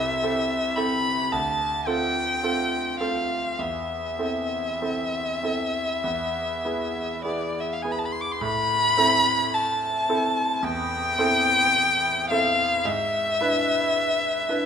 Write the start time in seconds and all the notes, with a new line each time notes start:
Already playing: C2 C4 E4 A4 E5
0.23 C4 E4 A4
0.76 C4 E4 A4 B5
1.32 D2 A5
1.87 C4 F4 A4 G5
2.43 C4 F4 A4
3.00 C4 F4 A4 F5
3.59 E2 E5
4.19 C4 E4 A4
4.82 C4 E4 A4
5.43 C4 E4 A4
6.04 E2
6.65 B3 E4 G#4
7.24 B3 E4 G#4 D5
7.60 E5
7.73 F5
7.82 B3 E4 G#4 G#5
7.91 B5
7.98 A5
8.05 B5
8.12 C6
8.20 D6
8.31 C6
8.41 A2 B5
8.97 C4 E4 A4
9.53 A5
10.09 C4 E4 A4
10.63 E2 G5
11.19 C4 E4 A4
12.30 C4 E4 A4 F5
12.85 G#2 E5
13.41 D4 E4 B4
14.49 D4 E4 B4